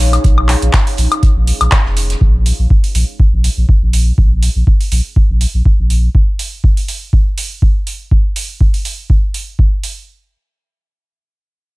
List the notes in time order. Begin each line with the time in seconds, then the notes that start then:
Already playing: A#1 D#4 G#4 C#5 F5
0.00 snare, closed hi-hat, open hi-hat
0.13 closed hi-hat, high woodblock
0.24 A#1, kick, closed hi-hat
0.38 high woodblock
0.48 clap, closed hi-hat, open hi-hat
0.62 A#1, closed hi-hat
0.73 kick, snare, clap, closed hi-hat
0.87 closed hi-hat, open hi-hat
0.97 A#1, closed hi-hat, open hi-hat
1.12 closed hi-hat, high woodblock
1.23 kick, closed hi-hat
1.36 A#1
1.47 closed hi-hat, open hi-hat
1.61 A#1, closed hi-hat, high woodblock
1.72 kick, snare, clap, closed hi-hat
1.85 F1, snare
1.97 closed hi-hat, open hi-hat
2.10 snare, closed hi-hat
2.21 A#1, kick
2.46 open hi-hat
2.59 A#1
2.70 kick
2.84 open hi-hat
2.95 A#1, open hi-hat
3.20 kick
3.33 A#1
3.44 open hi-hat
3.58 A#1
3.69 kick
3.82 A#1
3.93 open hi-hat
4.18 A#1, kick
4.43 open hi-hat
4.56 A#1
4.67 kick
4.81 open hi-hat
4.92 A#1, open hi-hat
5.16 kick
5.30 A#1
5.41 open hi-hat
5.54 A#1
5.66 kick
5.79 A#1
5.90 open hi-hat
6.15 kick
6.39 open hi-hat
6.64 kick
6.77 open hi-hat
6.88 open hi-hat
7.13 kick
7.38 open hi-hat
7.62 kick
7.87 open hi-hat
8.11 kick
8.36 open hi-hat
8.61 kick
8.74 open hi-hat
8.85 open hi-hat
9.10 kick
9.34 open hi-hat
9.59 kick
9.84 open hi-hat